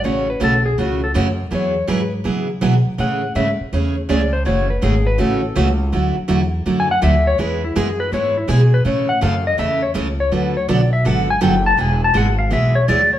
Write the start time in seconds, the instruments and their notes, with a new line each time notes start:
0.04 upright bass A1, steel-string acoustic guitar C#3 E3 A3 C#4 F#4, electric slide guitar C#5
0.30 electric slide guitar B4
0.40 upright bass B1, steel-string acoustic guitar C#3 E3 A3 C#4 F#4, electric slide guitar A4
0.66 electric slide guitar G#4
0.78 upright bass C#2, steel-string acoustic guitar C#3 E3 A3 C#4 F#4, electric slide guitar F#4
1.04 electric slide guitar A4
1.14 upright bass F#2, steel-string acoustic guitar C#3 E3 A3 C#4 F#4
1.51 upright bass E2, steel-string acoustic guitar E3 F#3 B3 E4 G#4
1.55 electric slide guitar C#5
1.87 upright bass G#2, steel-string acoustic guitar E3 F#3 B3 E4 G#4, electric slide guitar B4
2.24 upright bass C#3, steel-string acoustic guitar E3 F#3 B3 E4 G#4
2.61 upright bass B2, steel-string acoustic guitar E3 F#3 B3 E4 G#4
2.86 muted upright bass stroke
2.98 upright bass A2, steel-string acoustic guitar C#3 E3 A3 C#4 G#4, electric slide guitar F#5
3.35 upright bass G#2, steel-string acoustic guitar C#3 E3 A3 C#4 G#4, electric slide guitar E5
3.60 muted upright bass stroke
3.73 upright bass E2, steel-string acoustic guitar C#3 E3 A3 C#4 G#4
4.09 upright bass C#2, steel-string acoustic guitar C#3 E3 A3 C#4 G#4, electric slide guitar D5
4.33 electric slide guitar C5
4.45 upright bass F#1, steel-string acoustic guitar C#3 E3 A3 C#4 F#4, electric slide guitar C#5
4.70 electric slide guitar B4
4.82 upright bass G#1, steel-string acoustic guitar C#3 E3 A3 C#4 F#4, electric slide guitar G#4
5.07 electric slide guitar B4
5.18 upright bass A1, steel-string acoustic guitar C#3 E3 A3 C#4 F#4, electric slide guitar A4
5.55 upright bass C#2, steel-string acoustic guitar C#3 E3 A3 C#4 F#4
5.92 upright bass D2, steel-string acoustic guitar D3 F#3 A3 E4 F#4
6.17 muted upright bass stroke
6.28 upright bass E2, steel-string acoustic guitar D3 F#3 A3 E4 F#4
6.66 upright bass F#2, steel-string acoustic guitar D3 F#3 A3 E4 F#4
6.80 electric slide guitar G#5
6.91 electric slide guitar F#5
7.02 upright bass D2, steel-string acoustic guitar D3 F#3 A3 E4 F#4, electric slide guitar E5
7.27 electric slide guitar C#5
7.38 upright bass E2, steel-string acoustic guitar E3 G#3 B3 E4 G#4, electric slide guitar B4
7.64 electric slide guitar E4
7.76 upright bass F#2, steel-string acoustic guitar E3 G#3 B3 E4 G#4, electric slide guitar G#4
8.00 electric slide guitar B4
8.12 upright bass G#2, steel-string acoustic guitar E3 G#3 B3 E4 G#4, electric slide guitar C#5
8.37 electric slide guitar E4
8.48 upright bass B2, steel-string acoustic guitar E3 G#3 B3 E4 G#4, electric slide guitar G#4
8.74 electric slide guitar B4
8.85 upright bass A2, steel-string acoustic guitar C#3 E3 A3 C#4 A4, electric slide guitar C#5
9.09 electric slide guitar F#5
9.21 upright bass F#2, steel-string acoustic guitar C#3 E3 A3 C#4 A4, electric slide guitar F5
9.47 electric slide guitar D#5
9.57 upright bass E2, steel-string acoustic guitar C#3 E3 A3 C#4 A4, electric slide guitar E5
9.82 electric slide guitar C#5
9.94 upright bass C#2, steel-string acoustic guitar C#3 E3 A3 C#4 A4
10.20 electric slide guitar C#5
10.32 upright bass D2, steel-string acoustic guitar D3 F#3 B3 F#4 A4, electric slide guitar B4
10.57 electric slide guitar C#5
10.68 upright bass B1, steel-string acoustic guitar D3 F#3 B3 F#4 A4, electric slide guitar D5
10.93 electric slide guitar E5
11.05 upright bass G#1, steel-string acoustic guitar D3 F#3 B3 F#4 A4, electric slide guitar F#5
11.30 electric slide guitar G#5
11.41 upright bass F#1, steel-string acoustic guitar D3 F#3 B3 F#4 A4, electric slide guitar G5
11.66 electric slide guitar A5
11.77 upright bass E1, steel-string acoustic guitar E3 G#3 B3 E4 G#4, electric slide guitar G#5
12.04 electric slide guitar A5
12.14 upright bass G#1, steel-string acoustic guitar E3 G#3 B3 E4 G#4, electric slide guitar F#5
12.39 electric slide guitar F5
12.51 upright bass B1, steel-string acoustic guitar E3 G#3 B3 E4 G#4, electric slide guitar E5
12.75 electric slide guitar C#5
12.88 upright bass D2, steel-string acoustic guitar E3 G#3 B3 E4 G#4, electric slide guitar D5
13.13 electric slide guitar C#5